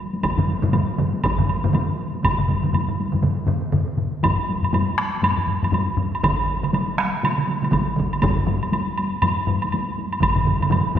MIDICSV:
0, 0, Header, 1, 3, 480
1, 0, Start_track
1, 0, Tempo, 499168
1, 225, Time_signature, 4, 2, 24, 8
1, 10570, End_track
2, 0, Start_track
2, 0, Title_t, "Taiko and cinematic ensemble drums"
2, 127, Note_on_c, 9, 48, 45
2, 222, Note_off_c, 9, 48, 0
2, 222, Note_on_c, 9, 48, 57
2, 223, Note_on_c, 9, 41, 79
2, 318, Note_off_c, 9, 48, 0
2, 320, Note_off_c, 9, 41, 0
2, 362, Note_on_c, 9, 45, 88
2, 369, Note_on_c, 9, 47, 92
2, 458, Note_off_c, 9, 45, 0
2, 465, Note_off_c, 9, 47, 0
2, 470, Note_on_c, 9, 48, 45
2, 566, Note_off_c, 9, 48, 0
2, 608, Note_on_c, 9, 47, 94
2, 610, Note_on_c, 9, 45, 88
2, 614, Note_on_c, 9, 48, 51
2, 702, Note_off_c, 9, 48, 0
2, 702, Note_on_c, 9, 48, 62
2, 704, Note_off_c, 9, 47, 0
2, 706, Note_off_c, 9, 45, 0
2, 706, Note_on_c, 9, 47, 86
2, 709, Note_on_c, 9, 45, 92
2, 798, Note_off_c, 9, 48, 0
2, 802, Note_off_c, 9, 47, 0
2, 805, Note_off_c, 9, 45, 0
2, 946, Note_on_c, 9, 45, 90
2, 947, Note_on_c, 9, 47, 86
2, 948, Note_on_c, 9, 48, 47
2, 1042, Note_off_c, 9, 45, 0
2, 1043, Note_off_c, 9, 47, 0
2, 1044, Note_off_c, 9, 48, 0
2, 1094, Note_on_c, 9, 48, 50
2, 1191, Note_off_c, 9, 48, 0
2, 1195, Note_on_c, 9, 48, 61
2, 1198, Note_on_c, 9, 41, 86
2, 1291, Note_off_c, 9, 48, 0
2, 1294, Note_off_c, 9, 41, 0
2, 1330, Note_on_c, 9, 47, 85
2, 1338, Note_on_c, 9, 45, 83
2, 1426, Note_off_c, 9, 47, 0
2, 1434, Note_off_c, 9, 45, 0
2, 1435, Note_on_c, 9, 48, 42
2, 1531, Note_off_c, 9, 48, 0
2, 1579, Note_on_c, 9, 47, 92
2, 1580, Note_on_c, 9, 48, 47
2, 1583, Note_on_c, 9, 45, 86
2, 1672, Note_off_c, 9, 47, 0
2, 1672, Note_on_c, 9, 47, 86
2, 1675, Note_off_c, 9, 48, 0
2, 1675, Note_on_c, 9, 48, 58
2, 1678, Note_off_c, 9, 45, 0
2, 1678, Note_on_c, 9, 45, 87
2, 1768, Note_off_c, 9, 47, 0
2, 1771, Note_off_c, 9, 48, 0
2, 1774, Note_off_c, 9, 45, 0
2, 2068, Note_on_c, 9, 48, 45
2, 2150, Note_on_c, 9, 47, 64
2, 2157, Note_on_c, 9, 41, 76
2, 2159, Note_on_c, 9, 45, 64
2, 2160, Note_off_c, 9, 48, 0
2, 2160, Note_on_c, 9, 48, 60
2, 2246, Note_off_c, 9, 47, 0
2, 2253, Note_off_c, 9, 41, 0
2, 2255, Note_off_c, 9, 45, 0
2, 2256, Note_off_c, 9, 48, 0
2, 2291, Note_on_c, 9, 47, 64
2, 2293, Note_on_c, 9, 45, 59
2, 2382, Note_off_c, 9, 47, 0
2, 2382, Note_on_c, 9, 47, 64
2, 2389, Note_off_c, 9, 45, 0
2, 2398, Note_on_c, 9, 45, 58
2, 2404, Note_on_c, 9, 48, 45
2, 2478, Note_off_c, 9, 47, 0
2, 2494, Note_off_c, 9, 45, 0
2, 2500, Note_off_c, 9, 48, 0
2, 2529, Note_on_c, 9, 47, 64
2, 2541, Note_on_c, 9, 45, 61
2, 2555, Note_on_c, 9, 48, 47
2, 2625, Note_off_c, 9, 47, 0
2, 2626, Note_on_c, 9, 47, 62
2, 2633, Note_off_c, 9, 45, 0
2, 2633, Note_on_c, 9, 45, 67
2, 2645, Note_off_c, 9, 48, 0
2, 2645, Note_on_c, 9, 48, 55
2, 2722, Note_off_c, 9, 47, 0
2, 2729, Note_off_c, 9, 45, 0
2, 2741, Note_off_c, 9, 48, 0
2, 2775, Note_on_c, 9, 45, 60
2, 2776, Note_on_c, 9, 47, 58
2, 2872, Note_off_c, 9, 45, 0
2, 2872, Note_off_c, 9, 47, 0
2, 2884, Note_on_c, 9, 48, 48
2, 2980, Note_off_c, 9, 48, 0
2, 3005, Note_on_c, 9, 47, 66
2, 3013, Note_on_c, 9, 45, 64
2, 3034, Note_on_c, 9, 48, 49
2, 3101, Note_off_c, 9, 45, 0
2, 3101, Note_off_c, 9, 47, 0
2, 3101, Note_on_c, 9, 45, 83
2, 3103, Note_on_c, 9, 47, 82
2, 3130, Note_off_c, 9, 48, 0
2, 3197, Note_off_c, 9, 45, 0
2, 3199, Note_off_c, 9, 47, 0
2, 3343, Note_on_c, 9, 47, 77
2, 3344, Note_on_c, 9, 45, 86
2, 3439, Note_off_c, 9, 47, 0
2, 3440, Note_off_c, 9, 45, 0
2, 3580, Note_on_c, 9, 47, 91
2, 3589, Note_on_c, 9, 45, 86
2, 3676, Note_off_c, 9, 47, 0
2, 3685, Note_off_c, 9, 45, 0
2, 3820, Note_on_c, 9, 47, 56
2, 3825, Note_on_c, 9, 45, 64
2, 3916, Note_off_c, 9, 47, 0
2, 3921, Note_off_c, 9, 45, 0
2, 4069, Note_on_c, 9, 45, 103
2, 4081, Note_on_c, 9, 41, 81
2, 4084, Note_on_c, 9, 48, 68
2, 4165, Note_off_c, 9, 45, 0
2, 4177, Note_off_c, 9, 41, 0
2, 4180, Note_off_c, 9, 48, 0
2, 4218, Note_on_c, 9, 48, 21
2, 4314, Note_off_c, 9, 48, 0
2, 4318, Note_on_c, 9, 48, 53
2, 4415, Note_off_c, 9, 48, 0
2, 4451, Note_on_c, 9, 45, 66
2, 4463, Note_on_c, 9, 48, 23
2, 4547, Note_off_c, 9, 45, 0
2, 4548, Note_off_c, 9, 48, 0
2, 4548, Note_on_c, 9, 45, 101
2, 4548, Note_on_c, 9, 48, 67
2, 4644, Note_off_c, 9, 45, 0
2, 4645, Note_off_c, 9, 48, 0
2, 4707, Note_on_c, 9, 48, 22
2, 4787, Note_on_c, 9, 37, 76
2, 4803, Note_off_c, 9, 48, 0
2, 4803, Note_on_c, 9, 48, 55
2, 4883, Note_off_c, 9, 37, 0
2, 4899, Note_off_c, 9, 48, 0
2, 4942, Note_on_c, 9, 48, 23
2, 5020, Note_on_c, 9, 45, 67
2, 5030, Note_off_c, 9, 48, 0
2, 5030, Note_on_c, 9, 48, 70
2, 5116, Note_off_c, 9, 45, 0
2, 5126, Note_off_c, 9, 48, 0
2, 5167, Note_on_c, 9, 45, 70
2, 5171, Note_on_c, 9, 48, 22
2, 5263, Note_off_c, 9, 45, 0
2, 5265, Note_on_c, 9, 45, 69
2, 5267, Note_off_c, 9, 48, 0
2, 5361, Note_off_c, 9, 45, 0
2, 5412, Note_on_c, 9, 45, 71
2, 5416, Note_on_c, 9, 48, 52
2, 5500, Note_off_c, 9, 45, 0
2, 5500, Note_on_c, 9, 45, 95
2, 5511, Note_off_c, 9, 48, 0
2, 5511, Note_on_c, 9, 48, 72
2, 5597, Note_off_c, 9, 45, 0
2, 5607, Note_off_c, 9, 48, 0
2, 5666, Note_on_c, 9, 48, 21
2, 5740, Note_on_c, 9, 45, 95
2, 5762, Note_off_c, 9, 48, 0
2, 5837, Note_off_c, 9, 45, 0
2, 5909, Note_on_c, 9, 48, 21
2, 5995, Note_on_c, 9, 47, 96
2, 5999, Note_on_c, 9, 41, 93
2, 6000, Note_off_c, 9, 48, 0
2, 6000, Note_on_c, 9, 48, 65
2, 6091, Note_off_c, 9, 47, 0
2, 6095, Note_off_c, 9, 41, 0
2, 6096, Note_off_c, 9, 48, 0
2, 6148, Note_on_c, 9, 48, 21
2, 6244, Note_off_c, 9, 48, 0
2, 6376, Note_on_c, 9, 47, 71
2, 6379, Note_on_c, 9, 48, 21
2, 6471, Note_off_c, 9, 48, 0
2, 6471, Note_on_c, 9, 48, 68
2, 6472, Note_off_c, 9, 47, 0
2, 6476, Note_on_c, 9, 47, 89
2, 6567, Note_off_c, 9, 48, 0
2, 6572, Note_off_c, 9, 47, 0
2, 6612, Note_on_c, 9, 48, 22
2, 6708, Note_off_c, 9, 48, 0
2, 6714, Note_on_c, 9, 37, 68
2, 6715, Note_on_c, 9, 48, 51
2, 6810, Note_off_c, 9, 37, 0
2, 6811, Note_off_c, 9, 48, 0
2, 6955, Note_on_c, 9, 48, 66
2, 6958, Note_on_c, 9, 47, 72
2, 7051, Note_off_c, 9, 48, 0
2, 7054, Note_off_c, 9, 47, 0
2, 7095, Note_on_c, 9, 47, 67
2, 7101, Note_on_c, 9, 48, 21
2, 7183, Note_off_c, 9, 47, 0
2, 7183, Note_on_c, 9, 47, 64
2, 7197, Note_off_c, 9, 48, 0
2, 7198, Note_on_c, 9, 48, 50
2, 7279, Note_off_c, 9, 47, 0
2, 7294, Note_off_c, 9, 48, 0
2, 7325, Note_on_c, 9, 47, 76
2, 7341, Note_on_c, 9, 48, 48
2, 7414, Note_off_c, 9, 47, 0
2, 7414, Note_on_c, 9, 47, 106
2, 7431, Note_on_c, 9, 41, 69
2, 7434, Note_off_c, 9, 48, 0
2, 7434, Note_on_c, 9, 48, 65
2, 7511, Note_off_c, 9, 47, 0
2, 7527, Note_off_c, 9, 41, 0
2, 7530, Note_off_c, 9, 48, 0
2, 7578, Note_on_c, 9, 48, 20
2, 7655, Note_on_c, 9, 47, 82
2, 7669, Note_off_c, 9, 48, 0
2, 7669, Note_on_c, 9, 48, 52
2, 7679, Note_on_c, 9, 41, 70
2, 7751, Note_off_c, 9, 47, 0
2, 7765, Note_off_c, 9, 48, 0
2, 7775, Note_off_c, 9, 41, 0
2, 7817, Note_on_c, 9, 48, 21
2, 7903, Note_off_c, 9, 48, 0
2, 7903, Note_on_c, 9, 48, 66
2, 7908, Note_on_c, 9, 45, 66
2, 7912, Note_on_c, 9, 41, 90
2, 7999, Note_off_c, 9, 48, 0
2, 8004, Note_off_c, 9, 45, 0
2, 8008, Note_off_c, 9, 41, 0
2, 8047, Note_on_c, 9, 45, 67
2, 8053, Note_on_c, 9, 48, 20
2, 8143, Note_off_c, 9, 45, 0
2, 8144, Note_on_c, 9, 45, 99
2, 8148, Note_off_c, 9, 48, 0
2, 8148, Note_on_c, 9, 48, 52
2, 8241, Note_off_c, 9, 45, 0
2, 8244, Note_off_c, 9, 48, 0
2, 8294, Note_on_c, 9, 48, 22
2, 8389, Note_off_c, 9, 48, 0
2, 8389, Note_on_c, 9, 48, 68
2, 8485, Note_off_c, 9, 48, 0
2, 8549, Note_on_c, 9, 48, 22
2, 8645, Note_off_c, 9, 48, 0
2, 8647, Note_on_c, 9, 48, 50
2, 8743, Note_off_c, 9, 48, 0
2, 8793, Note_on_c, 9, 48, 21
2, 8867, Note_on_c, 9, 45, 98
2, 8879, Note_off_c, 9, 48, 0
2, 8879, Note_on_c, 9, 48, 61
2, 8964, Note_off_c, 9, 45, 0
2, 8975, Note_off_c, 9, 48, 0
2, 9022, Note_on_c, 9, 48, 20
2, 9107, Note_on_c, 9, 45, 96
2, 9118, Note_off_c, 9, 48, 0
2, 9123, Note_on_c, 9, 48, 44
2, 9203, Note_off_c, 9, 45, 0
2, 9220, Note_off_c, 9, 48, 0
2, 9271, Note_on_c, 9, 48, 46
2, 9365, Note_off_c, 9, 48, 0
2, 9365, Note_on_c, 9, 48, 61
2, 9461, Note_off_c, 9, 48, 0
2, 9512, Note_on_c, 9, 48, 21
2, 9598, Note_off_c, 9, 48, 0
2, 9598, Note_on_c, 9, 48, 52
2, 9694, Note_off_c, 9, 48, 0
2, 9741, Note_on_c, 9, 48, 18
2, 9811, Note_on_c, 9, 47, 67
2, 9825, Note_on_c, 9, 45, 69
2, 9827, Note_on_c, 9, 41, 79
2, 9832, Note_off_c, 9, 48, 0
2, 9832, Note_on_c, 9, 48, 63
2, 9907, Note_off_c, 9, 47, 0
2, 9921, Note_off_c, 9, 45, 0
2, 9923, Note_off_c, 9, 41, 0
2, 9928, Note_off_c, 9, 48, 0
2, 9959, Note_on_c, 9, 45, 70
2, 9965, Note_on_c, 9, 47, 66
2, 9983, Note_on_c, 9, 48, 19
2, 10047, Note_off_c, 9, 45, 0
2, 10047, Note_on_c, 9, 45, 65
2, 10061, Note_off_c, 9, 47, 0
2, 10066, Note_on_c, 9, 47, 74
2, 10079, Note_off_c, 9, 48, 0
2, 10079, Note_on_c, 9, 48, 48
2, 10143, Note_off_c, 9, 45, 0
2, 10162, Note_off_c, 9, 47, 0
2, 10175, Note_off_c, 9, 48, 0
2, 10197, Note_on_c, 9, 45, 68
2, 10217, Note_on_c, 9, 47, 76
2, 10217, Note_on_c, 9, 48, 21
2, 10289, Note_off_c, 9, 45, 0
2, 10289, Note_on_c, 9, 45, 104
2, 10303, Note_off_c, 9, 47, 0
2, 10303, Note_on_c, 9, 47, 89
2, 10314, Note_off_c, 9, 48, 0
2, 10318, Note_on_c, 9, 48, 65
2, 10386, Note_off_c, 9, 45, 0
2, 10399, Note_off_c, 9, 47, 0
2, 10415, Note_off_c, 9, 48, 0
2, 10463, Note_on_c, 9, 48, 23
2, 10534, Note_on_c, 9, 45, 103
2, 10559, Note_off_c, 9, 48, 0
2, 10570, Note_off_c, 9, 45, 0
2, 10570, End_track
3, 0, Start_track
3, 0, Title_t, "Drums"
3, 225, Note_on_c, 9, 76, 47
3, 322, Note_off_c, 9, 76, 0
3, 704, Note_on_c, 9, 76, 40
3, 800, Note_off_c, 9, 76, 0
3, 1189, Note_on_c, 9, 76, 48
3, 1285, Note_off_c, 9, 76, 0
3, 1436, Note_on_c, 9, 76, 38
3, 1533, Note_off_c, 9, 76, 0
3, 1679, Note_on_c, 9, 76, 36
3, 1775, Note_off_c, 9, 76, 0
3, 2160, Note_on_c, 9, 76, 57
3, 2256, Note_off_c, 9, 76, 0
3, 2639, Note_on_c, 9, 76, 42
3, 2735, Note_off_c, 9, 76, 0
3, 4075, Note_on_c, 9, 76, 52
3, 4171, Note_off_c, 9, 76, 0
3, 4465, Note_on_c, 9, 76, 39
3, 4561, Note_off_c, 9, 76, 0
3, 4561, Note_on_c, 9, 76, 46
3, 4657, Note_off_c, 9, 76, 0
3, 4795, Note_on_c, 9, 76, 44
3, 4891, Note_off_c, 9, 76, 0
3, 5038, Note_on_c, 9, 76, 58
3, 5134, Note_off_c, 9, 76, 0
3, 5427, Note_on_c, 9, 76, 43
3, 5521, Note_off_c, 9, 76, 0
3, 5521, Note_on_c, 9, 76, 44
3, 5617, Note_off_c, 9, 76, 0
3, 5913, Note_on_c, 9, 76, 46
3, 6001, Note_off_c, 9, 76, 0
3, 6001, Note_on_c, 9, 76, 59
3, 6097, Note_off_c, 9, 76, 0
3, 6386, Note_on_c, 9, 76, 39
3, 6482, Note_off_c, 9, 76, 0
3, 6485, Note_on_c, 9, 76, 46
3, 6581, Note_off_c, 9, 76, 0
3, 6732, Note_on_c, 9, 76, 42
3, 6828, Note_off_c, 9, 76, 0
3, 6969, Note_on_c, 9, 76, 54
3, 7066, Note_off_c, 9, 76, 0
3, 7351, Note_on_c, 9, 76, 42
3, 7434, Note_off_c, 9, 76, 0
3, 7434, Note_on_c, 9, 76, 40
3, 7530, Note_off_c, 9, 76, 0
3, 7818, Note_on_c, 9, 76, 40
3, 7904, Note_off_c, 9, 76, 0
3, 7904, Note_on_c, 9, 76, 48
3, 8000, Note_off_c, 9, 76, 0
3, 8296, Note_on_c, 9, 76, 40
3, 8392, Note_off_c, 9, 76, 0
3, 8398, Note_on_c, 9, 76, 43
3, 8494, Note_off_c, 9, 76, 0
3, 8630, Note_on_c, 9, 76, 43
3, 8727, Note_off_c, 9, 76, 0
3, 8866, Note_on_c, 9, 76, 54
3, 8962, Note_off_c, 9, 76, 0
3, 9251, Note_on_c, 9, 76, 45
3, 9347, Note_off_c, 9, 76, 0
3, 9350, Note_on_c, 9, 76, 38
3, 9446, Note_off_c, 9, 76, 0
3, 9736, Note_on_c, 9, 76, 43
3, 9833, Note_off_c, 9, 76, 0
3, 9837, Note_on_c, 9, 76, 61
3, 9933, Note_off_c, 9, 76, 0
3, 10217, Note_on_c, 9, 76, 44
3, 10311, Note_off_c, 9, 76, 0
3, 10311, Note_on_c, 9, 76, 48
3, 10407, Note_off_c, 9, 76, 0
3, 10570, End_track
0, 0, End_of_file